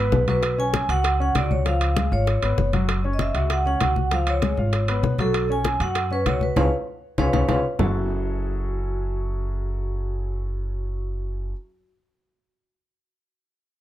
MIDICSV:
0, 0, Header, 1, 5, 480
1, 0, Start_track
1, 0, Key_signature, 3, "minor"
1, 0, Tempo, 306905
1, 673, Time_signature, 4, 2, 24, 8
1, 21586, End_track
2, 0, Start_track
2, 0, Title_t, "Vibraphone"
2, 0, Program_c, 0, 11
2, 0, Note_on_c, 0, 71, 89
2, 379, Note_off_c, 0, 71, 0
2, 464, Note_on_c, 0, 71, 99
2, 934, Note_on_c, 0, 80, 101
2, 942, Note_off_c, 0, 71, 0
2, 1371, Note_off_c, 0, 80, 0
2, 1406, Note_on_c, 0, 78, 98
2, 1846, Note_off_c, 0, 78, 0
2, 1903, Note_on_c, 0, 78, 100
2, 2135, Note_off_c, 0, 78, 0
2, 2135, Note_on_c, 0, 74, 88
2, 2371, Note_off_c, 0, 74, 0
2, 2372, Note_on_c, 0, 73, 81
2, 2476, Note_off_c, 0, 73, 0
2, 2618, Note_on_c, 0, 77, 89
2, 3330, Note_on_c, 0, 73, 81
2, 3347, Note_off_c, 0, 77, 0
2, 4219, Note_off_c, 0, 73, 0
2, 4901, Note_on_c, 0, 75, 60
2, 5002, Note_off_c, 0, 75, 0
2, 5022, Note_on_c, 0, 76, 79
2, 5502, Note_off_c, 0, 76, 0
2, 5506, Note_on_c, 0, 78, 88
2, 5723, Note_off_c, 0, 78, 0
2, 5741, Note_on_c, 0, 78, 99
2, 6460, Note_on_c, 0, 77, 84
2, 6469, Note_off_c, 0, 78, 0
2, 6693, Note_off_c, 0, 77, 0
2, 6700, Note_on_c, 0, 73, 83
2, 8064, Note_off_c, 0, 73, 0
2, 8143, Note_on_c, 0, 69, 86
2, 8621, Note_off_c, 0, 69, 0
2, 8630, Note_on_c, 0, 80, 95
2, 9099, Note_on_c, 0, 78, 95
2, 9105, Note_off_c, 0, 80, 0
2, 9579, Note_off_c, 0, 78, 0
2, 9582, Note_on_c, 0, 71, 85
2, 9791, Note_off_c, 0, 71, 0
2, 9820, Note_on_c, 0, 73, 83
2, 10053, Note_off_c, 0, 73, 0
2, 10053, Note_on_c, 0, 71, 77
2, 10266, Note_off_c, 0, 71, 0
2, 10282, Note_on_c, 0, 73, 83
2, 10283, Note_on_c, 0, 77, 82
2, 10285, Note_on_c, 0, 71, 85
2, 10431, Note_off_c, 0, 73, 0
2, 10432, Note_off_c, 0, 77, 0
2, 10433, Note_off_c, 0, 71, 0
2, 11249, Note_on_c, 0, 73, 89
2, 11250, Note_on_c, 0, 71, 84
2, 11251, Note_on_c, 0, 77, 92
2, 11395, Note_off_c, 0, 73, 0
2, 11396, Note_off_c, 0, 71, 0
2, 11397, Note_off_c, 0, 77, 0
2, 11473, Note_on_c, 0, 77, 88
2, 11474, Note_on_c, 0, 71, 91
2, 11475, Note_on_c, 0, 73, 90
2, 11626, Note_off_c, 0, 71, 0
2, 11626, Note_off_c, 0, 77, 0
2, 11627, Note_off_c, 0, 73, 0
2, 11714, Note_on_c, 0, 73, 83
2, 11717, Note_on_c, 0, 71, 81
2, 11718, Note_on_c, 0, 77, 85
2, 11867, Note_off_c, 0, 73, 0
2, 11868, Note_off_c, 0, 71, 0
2, 11869, Note_off_c, 0, 77, 0
2, 12207, Note_on_c, 0, 66, 75
2, 18031, Note_off_c, 0, 66, 0
2, 21586, End_track
3, 0, Start_track
3, 0, Title_t, "Grand piano"
3, 0, Program_c, 1, 0
3, 0, Note_on_c, 1, 59, 72
3, 0, Note_on_c, 1, 71, 74
3, 345, Note_off_c, 1, 59, 0
3, 348, Note_off_c, 1, 71, 0
3, 432, Note_on_c, 1, 54, 76
3, 437, Note_on_c, 1, 66, 73
3, 826, Note_off_c, 1, 54, 0
3, 828, Note_off_c, 1, 66, 0
3, 911, Note_on_c, 1, 61, 66
3, 914, Note_on_c, 1, 73, 73
3, 1305, Note_off_c, 1, 61, 0
3, 1307, Note_off_c, 1, 73, 0
3, 1395, Note_on_c, 1, 66, 72
3, 1398, Note_on_c, 1, 78, 73
3, 1788, Note_off_c, 1, 66, 0
3, 1790, Note_off_c, 1, 78, 0
3, 1873, Note_on_c, 1, 61, 72
3, 1880, Note_on_c, 1, 73, 70
3, 2069, Note_off_c, 1, 61, 0
3, 2074, Note_off_c, 1, 73, 0
3, 2115, Note_on_c, 1, 66, 64
3, 2122, Note_on_c, 1, 78, 65
3, 2508, Note_off_c, 1, 66, 0
3, 2512, Note_off_c, 1, 78, 0
3, 2593, Note_on_c, 1, 53, 66
3, 2599, Note_on_c, 1, 65, 69
3, 2987, Note_off_c, 1, 53, 0
3, 2990, Note_off_c, 1, 65, 0
3, 3075, Note_on_c, 1, 56, 59
3, 3083, Note_on_c, 1, 68, 60
3, 3271, Note_off_c, 1, 56, 0
3, 3276, Note_off_c, 1, 68, 0
3, 3316, Note_on_c, 1, 65, 67
3, 3318, Note_on_c, 1, 77, 68
3, 3709, Note_off_c, 1, 65, 0
3, 3710, Note_off_c, 1, 77, 0
3, 3800, Note_on_c, 1, 59, 67
3, 3807, Note_on_c, 1, 71, 69
3, 4191, Note_off_c, 1, 59, 0
3, 4195, Note_off_c, 1, 71, 0
3, 4281, Note_on_c, 1, 54, 75
3, 4281, Note_on_c, 1, 66, 72
3, 4672, Note_off_c, 1, 54, 0
3, 4672, Note_off_c, 1, 66, 0
3, 4761, Note_on_c, 1, 61, 66
3, 4765, Note_on_c, 1, 73, 65
3, 5151, Note_off_c, 1, 61, 0
3, 5154, Note_off_c, 1, 73, 0
3, 5239, Note_on_c, 1, 66, 68
3, 5243, Note_on_c, 1, 78, 67
3, 5630, Note_off_c, 1, 66, 0
3, 5632, Note_off_c, 1, 78, 0
3, 5720, Note_on_c, 1, 61, 71
3, 5727, Note_on_c, 1, 73, 70
3, 5914, Note_off_c, 1, 61, 0
3, 5918, Note_off_c, 1, 73, 0
3, 5962, Note_on_c, 1, 66, 60
3, 5969, Note_on_c, 1, 78, 61
3, 6352, Note_off_c, 1, 66, 0
3, 6356, Note_off_c, 1, 78, 0
3, 6440, Note_on_c, 1, 53, 70
3, 6445, Note_on_c, 1, 65, 73
3, 6831, Note_off_c, 1, 53, 0
3, 6834, Note_off_c, 1, 65, 0
3, 6925, Note_on_c, 1, 56, 63
3, 6926, Note_on_c, 1, 68, 58
3, 7117, Note_off_c, 1, 56, 0
3, 7118, Note_off_c, 1, 68, 0
3, 7163, Note_on_c, 1, 65, 68
3, 7168, Note_on_c, 1, 77, 68
3, 7552, Note_off_c, 1, 65, 0
3, 7556, Note_off_c, 1, 77, 0
3, 7641, Note_on_c, 1, 59, 73
3, 7646, Note_on_c, 1, 71, 71
3, 8031, Note_off_c, 1, 59, 0
3, 8034, Note_off_c, 1, 71, 0
3, 8120, Note_on_c, 1, 54, 76
3, 8127, Note_on_c, 1, 66, 69
3, 8511, Note_off_c, 1, 54, 0
3, 8514, Note_off_c, 1, 66, 0
3, 8599, Note_on_c, 1, 61, 65
3, 8602, Note_on_c, 1, 73, 65
3, 8990, Note_off_c, 1, 61, 0
3, 8991, Note_off_c, 1, 73, 0
3, 9081, Note_on_c, 1, 66, 68
3, 9085, Note_on_c, 1, 78, 63
3, 9471, Note_off_c, 1, 66, 0
3, 9473, Note_off_c, 1, 78, 0
3, 9559, Note_on_c, 1, 61, 69
3, 9564, Note_on_c, 1, 73, 64
3, 9753, Note_off_c, 1, 61, 0
3, 9756, Note_off_c, 1, 73, 0
3, 9797, Note_on_c, 1, 66, 58
3, 9806, Note_on_c, 1, 78, 61
3, 10189, Note_off_c, 1, 66, 0
3, 10193, Note_off_c, 1, 78, 0
3, 10274, Note_on_c, 1, 65, 83
3, 10275, Note_on_c, 1, 61, 80
3, 10276, Note_on_c, 1, 68, 82
3, 10427, Note_off_c, 1, 61, 0
3, 10427, Note_off_c, 1, 65, 0
3, 10428, Note_off_c, 1, 68, 0
3, 11237, Note_on_c, 1, 68, 91
3, 11239, Note_on_c, 1, 61, 82
3, 11239, Note_on_c, 1, 65, 85
3, 11388, Note_off_c, 1, 68, 0
3, 11389, Note_off_c, 1, 61, 0
3, 11390, Note_off_c, 1, 65, 0
3, 11468, Note_on_c, 1, 68, 82
3, 11469, Note_on_c, 1, 65, 88
3, 11470, Note_on_c, 1, 61, 84
3, 11623, Note_off_c, 1, 68, 0
3, 11624, Note_off_c, 1, 61, 0
3, 11624, Note_off_c, 1, 65, 0
3, 11706, Note_on_c, 1, 65, 81
3, 11707, Note_on_c, 1, 68, 79
3, 11708, Note_on_c, 1, 61, 88
3, 11862, Note_off_c, 1, 65, 0
3, 11862, Note_off_c, 1, 68, 0
3, 11863, Note_off_c, 1, 61, 0
3, 12178, Note_on_c, 1, 54, 76
3, 12180, Note_on_c, 1, 61, 72
3, 12184, Note_on_c, 1, 64, 72
3, 12187, Note_on_c, 1, 66, 70
3, 12189, Note_on_c, 1, 68, 72
3, 12192, Note_on_c, 1, 69, 89
3, 18002, Note_off_c, 1, 54, 0
3, 18004, Note_off_c, 1, 61, 0
3, 18008, Note_off_c, 1, 64, 0
3, 18011, Note_off_c, 1, 66, 0
3, 18013, Note_off_c, 1, 68, 0
3, 18016, Note_off_c, 1, 69, 0
3, 21586, End_track
4, 0, Start_track
4, 0, Title_t, "Upright bass"
4, 0, Program_c, 2, 32
4, 184, Note_on_c, 2, 35, 82
4, 1302, Note_off_c, 2, 35, 0
4, 1386, Note_on_c, 2, 37, 83
4, 2059, Note_off_c, 2, 37, 0
4, 2112, Note_on_c, 2, 37, 89
4, 3226, Note_off_c, 2, 37, 0
4, 3311, Note_on_c, 2, 32, 86
4, 3759, Note_off_c, 2, 32, 0
4, 3793, Note_on_c, 2, 32, 68
4, 4016, Note_off_c, 2, 32, 0
4, 4031, Note_on_c, 2, 30, 78
4, 5146, Note_off_c, 2, 30, 0
4, 5229, Note_on_c, 2, 37, 84
4, 5901, Note_off_c, 2, 37, 0
4, 5954, Note_on_c, 2, 37, 76
4, 7067, Note_off_c, 2, 37, 0
4, 7148, Note_on_c, 2, 32, 85
4, 7820, Note_off_c, 2, 32, 0
4, 7864, Note_on_c, 2, 35, 75
4, 8981, Note_off_c, 2, 35, 0
4, 9069, Note_on_c, 2, 42, 88
4, 9740, Note_off_c, 2, 42, 0
4, 9788, Note_on_c, 2, 37, 79
4, 10236, Note_off_c, 2, 37, 0
4, 10268, Note_on_c, 2, 37, 95
4, 10448, Note_off_c, 2, 37, 0
4, 11230, Note_on_c, 2, 37, 89
4, 11409, Note_off_c, 2, 37, 0
4, 11469, Note_on_c, 2, 37, 86
4, 11649, Note_off_c, 2, 37, 0
4, 11709, Note_on_c, 2, 37, 83
4, 11889, Note_off_c, 2, 37, 0
4, 12186, Note_on_c, 2, 30, 88
4, 18010, Note_off_c, 2, 30, 0
4, 21586, End_track
5, 0, Start_track
5, 0, Title_t, "Drums"
5, 191, Note_on_c, 9, 60, 64
5, 191, Note_on_c, 9, 61, 77
5, 192, Note_on_c, 9, 66, 67
5, 194, Note_on_c, 9, 63, 79
5, 347, Note_off_c, 9, 60, 0
5, 347, Note_off_c, 9, 61, 0
5, 349, Note_off_c, 9, 66, 0
5, 351, Note_off_c, 9, 63, 0
5, 433, Note_on_c, 9, 60, 35
5, 434, Note_on_c, 9, 63, 68
5, 435, Note_on_c, 9, 65, 62
5, 590, Note_off_c, 9, 60, 0
5, 591, Note_off_c, 9, 63, 0
5, 591, Note_off_c, 9, 65, 0
5, 667, Note_on_c, 9, 60, 68
5, 674, Note_on_c, 9, 65, 91
5, 676, Note_on_c, 9, 63, 33
5, 823, Note_off_c, 9, 60, 0
5, 830, Note_off_c, 9, 65, 0
5, 833, Note_off_c, 9, 63, 0
5, 915, Note_on_c, 9, 63, 33
5, 1071, Note_off_c, 9, 63, 0
5, 1149, Note_on_c, 9, 60, 55
5, 1152, Note_on_c, 9, 63, 90
5, 1152, Note_on_c, 9, 65, 70
5, 1305, Note_off_c, 9, 60, 0
5, 1309, Note_off_c, 9, 63, 0
5, 1309, Note_off_c, 9, 65, 0
5, 1394, Note_on_c, 9, 63, 34
5, 1394, Note_on_c, 9, 65, 66
5, 1551, Note_off_c, 9, 63, 0
5, 1551, Note_off_c, 9, 65, 0
5, 1632, Note_on_c, 9, 60, 68
5, 1637, Note_on_c, 9, 63, 32
5, 1638, Note_on_c, 9, 65, 94
5, 1788, Note_off_c, 9, 60, 0
5, 1794, Note_off_c, 9, 63, 0
5, 1794, Note_off_c, 9, 65, 0
5, 1880, Note_on_c, 9, 63, 35
5, 2037, Note_off_c, 9, 63, 0
5, 2112, Note_on_c, 9, 60, 64
5, 2112, Note_on_c, 9, 61, 74
5, 2118, Note_on_c, 9, 65, 90
5, 2119, Note_on_c, 9, 63, 79
5, 2268, Note_off_c, 9, 60, 0
5, 2268, Note_off_c, 9, 61, 0
5, 2275, Note_off_c, 9, 65, 0
5, 2276, Note_off_c, 9, 63, 0
5, 2360, Note_on_c, 9, 63, 71
5, 2516, Note_off_c, 9, 63, 0
5, 2593, Note_on_c, 9, 60, 67
5, 2594, Note_on_c, 9, 65, 62
5, 2599, Note_on_c, 9, 63, 33
5, 2750, Note_off_c, 9, 60, 0
5, 2750, Note_off_c, 9, 65, 0
5, 2755, Note_off_c, 9, 63, 0
5, 2831, Note_on_c, 9, 65, 86
5, 2834, Note_on_c, 9, 60, 34
5, 2838, Note_on_c, 9, 63, 31
5, 2988, Note_off_c, 9, 65, 0
5, 2991, Note_off_c, 9, 60, 0
5, 2995, Note_off_c, 9, 63, 0
5, 3073, Note_on_c, 9, 60, 55
5, 3073, Note_on_c, 9, 63, 90
5, 3073, Note_on_c, 9, 65, 68
5, 3229, Note_off_c, 9, 60, 0
5, 3230, Note_off_c, 9, 63, 0
5, 3230, Note_off_c, 9, 65, 0
5, 3317, Note_on_c, 9, 63, 32
5, 3473, Note_off_c, 9, 63, 0
5, 3555, Note_on_c, 9, 60, 67
5, 3558, Note_on_c, 9, 65, 62
5, 3560, Note_on_c, 9, 63, 33
5, 3712, Note_off_c, 9, 60, 0
5, 3715, Note_off_c, 9, 65, 0
5, 3716, Note_off_c, 9, 63, 0
5, 3793, Note_on_c, 9, 65, 86
5, 3798, Note_on_c, 9, 63, 34
5, 3799, Note_on_c, 9, 60, 32
5, 3949, Note_off_c, 9, 65, 0
5, 3955, Note_off_c, 9, 63, 0
5, 3956, Note_off_c, 9, 60, 0
5, 4034, Note_on_c, 9, 60, 58
5, 4034, Note_on_c, 9, 61, 74
5, 4034, Note_on_c, 9, 63, 76
5, 4190, Note_off_c, 9, 63, 0
5, 4191, Note_off_c, 9, 60, 0
5, 4191, Note_off_c, 9, 61, 0
5, 4273, Note_on_c, 9, 63, 75
5, 4276, Note_on_c, 9, 65, 61
5, 4277, Note_on_c, 9, 60, 35
5, 4429, Note_off_c, 9, 63, 0
5, 4432, Note_off_c, 9, 65, 0
5, 4434, Note_off_c, 9, 60, 0
5, 4515, Note_on_c, 9, 60, 65
5, 4516, Note_on_c, 9, 65, 84
5, 4517, Note_on_c, 9, 63, 31
5, 4672, Note_off_c, 9, 60, 0
5, 4672, Note_off_c, 9, 65, 0
5, 4673, Note_off_c, 9, 63, 0
5, 4761, Note_on_c, 9, 63, 34
5, 4917, Note_off_c, 9, 63, 0
5, 4992, Note_on_c, 9, 60, 54
5, 4992, Note_on_c, 9, 65, 69
5, 4993, Note_on_c, 9, 63, 91
5, 5148, Note_off_c, 9, 60, 0
5, 5149, Note_off_c, 9, 63, 0
5, 5149, Note_off_c, 9, 65, 0
5, 5234, Note_on_c, 9, 65, 66
5, 5239, Note_on_c, 9, 63, 34
5, 5390, Note_off_c, 9, 65, 0
5, 5396, Note_off_c, 9, 63, 0
5, 5473, Note_on_c, 9, 60, 66
5, 5476, Note_on_c, 9, 65, 87
5, 5477, Note_on_c, 9, 63, 33
5, 5629, Note_off_c, 9, 60, 0
5, 5632, Note_off_c, 9, 65, 0
5, 5633, Note_off_c, 9, 63, 0
5, 5718, Note_on_c, 9, 63, 34
5, 5874, Note_off_c, 9, 63, 0
5, 5951, Note_on_c, 9, 65, 88
5, 5955, Note_on_c, 9, 60, 57
5, 5955, Note_on_c, 9, 61, 75
5, 5959, Note_on_c, 9, 63, 77
5, 6108, Note_off_c, 9, 65, 0
5, 6111, Note_off_c, 9, 60, 0
5, 6111, Note_off_c, 9, 61, 0
5, 6115, Note_off_c, 9, 63, 0
5, 6196, Note_on_c, 9, 63, 71
5, 6352, Note_off_c, 9, 63, 0
5, 6433, Note_on_c, 9, 65, 69
5, 6436, Note_on_c, 9, 60, 69
5, 6438, Note_on_c, 9, 63, 31
5, 6589, Note_off_c, 9, 65, 0
5, 6592, Note_off_c, 9, 60, 0
5, 6595, Note_off_c, 9, 63, 0
5, 6675, Note_on_c, 9, 65, 82
5, 6678, Note_on_c, 9, 63, 31
5, 6679, Note_on_c, 9, 60, 34
5, 6832, Note_off_c, 9, 65, 0
5, 6834, Note_off_c, 9, 63, 0
5, 6836, Note_off_c, 9, 60, 0
5, 6913, Note_on_c, 9, 65, 66
5, 6918, Note_on_c, 9, 60, 54
5, 6919, Note_on_c, 9, 63, 92
5, 7069, Note_off_c, 9, 65, 0
5, 7075, Note_off_c, 9, 60, 0
5, 7076, Note_off_c, 9, 63, 0
5, 7157, Note_on_c, 9, 63, 34
5, 7313, Note_off_c, 9, 63, 0
5, 7392, Note_on_c, 9, 63, 32
5, 7395, Note_on_c, 9, 65, 66
5, 7400, Note_on_c, 9, 60, 61
5, 7548, Note_off_c, 9, 63, 0
5, 7551, Note_off_c, 9, 65, 0
5, 7556, Note_off_c, 9, 60, 0
5, 7633, Note_on_c, 9, 63, 32
5, 7638, Note_on_c, 9, 65, 85
5, 7639, Note_on_c, 9, 60, 32
5, 7789, Note_off_c, 9, 63, 0
5, 7794, Note_off_c, 9, 65, 0
5, 7795, Note_off_c, 9, 60, 0
5, 7870, Note_on_c, 9, 63, 78
5, 7879, Note_on_c, 9, 60, 60
5, 7879, Note_on_c, 9, 61, 73
5, 8026, Note_off_c, 9, 63, 0
5, 8036, Note_off_c, 9, 60, 0
5, 8036, Note_off_c, 9, 61, 0
5, 8109, Note_on_c, 9, 63, 69
5, 8119, Note_on_c, 9, 65, 60
5, 8122, Note_on_c, 9, 60, 32
5, 8265, Note_off_c, 9, 63, 0
5, 8275, Note_off_c, 9, 65, 0
5, 8278, Note_off_c, 9, 60, 0
5, 8349, Note_on_c, 9, 63, 33
5, 8357, Note_on_c, 9, 60, 65
5, 8358, Note_on_c, 9, 65, 83
5, 8506, Note_off_c, 9, 63, 0
5, 8513, Note_off_c, 9, 60, 0
5, 8514, Note_off_c, 9, 65, 0
5, 8589, Note_on_c, 9, 63, 30
5, 8745, Note_off_c, 9, 63, 0
5, 8830, Note_on_c, 9, 63, 86
5, 8834, Note_on_c, 9, 65, 69
5, 8838, Note_on_c, 9, 60, 51
5, 8986, Note_off_c, 9, 63, 0
5, 8991, Note_off_c, 9, 65, 0
5, 8994, Note_off_c, 9, 60, 0
5, 9073, Note_on_c, 9, 63, 33
5, 9075, Note_on_c, 9, 65, 64
5, 9229, Note_off_c, 9, 63, 0
5, 9232, Note_off_c, 9, 65, 0
5, 9311, Note_on_c, 9, 65, 86
5, 9315, Note_on_c, 9, 63, 31
5, 9316, Note_on_c, 9, 60, 66
5, 9467, Note_off_c, 9, 65, 0
5, 9472, Note_off_c, 9, 63, 0
5, 9473, Note_off_c, 9, 60, 0
5, 9549, Note_on_c, 9, 63, 33
5, 9705, Note_off_c, 9, 63, 0
5, 9790, Note_on_c, 9, 63, 78
5, 9791, Note_on_c, 9, 65, 82
5, 9797, Note_on_c, 9, 60, 61
5, 9797, Note_on_c, 9, 61, 74
5, 9946, Note_off_c, 9, 63, 0
5, 9947, Note_off_c, 9, 65, 0
5, 9954, Note_off_c, 9, 60, 0
5, 9954, Note_off_c, 9, 61, 0
5, 10027, Note_on_c, 9, 63, 68
5, 10184, Note_off_c, 9, 63, 0
5, 10265, Note_on_c, 9, 63, 89
5, 10270, Note_on_c, 9, 61, 92
5, 10272, Note_on_c, 9, 65, 96
5, 10422, Note_off_c, 9, 63, 0
5, 10426, Note_off_c, 9, 61, 0
5, 10428, Note_off_c, 9, 65, 0
5, 11229, Note_on_c, 9, 63, 84
5, 11231, Note_on_c, 9, 61, 96
5, 11232, Note_on_c, 9, 65, 88
5, 11386, Note_off_c, 9, 63, 0
5, 11387, Note_off_c, 9, 61, 0
5, 11388, Note_off_c, 9, 65, 0
5, 11468, Note_on_c, 9, 65, 88
5, 11473, Note_on_c, 9, 61, 95
5, 11473, Note_on_c, 9, 63, 96
5, 11625, Note_off_c, 9, 65, 0
5, 11629, Note_off_c, 9, 61, 0
5, 11630, Note_off_c, 9, 63, 0
5, 11706, Note_on_c, 9, 61, 82
5, 11708, Note_on_c, 9, 65, 95
5, 11712, Note_on_c, 9, 63, 89
5, 11863, Note_off_c, 9, 61, 0
5, 11864, Note_off_c, 9, 65, 0
5, 11869, Note_off_c, 9, 63, 0
5, 12187, Note_on_c, 9, 61, 91
5, 12188, Note_on_c, 9, 66, 85
5, 12189, Note_on_c, 9, 64, 88
5, 12343, Note_off_c, 9, 61, 0
5, 12345, Note_off_c, 9, 64, 0
5, 12345, Note_off_c, 9, 66, 0
5, 21586, End_track
0, 0, End_of_file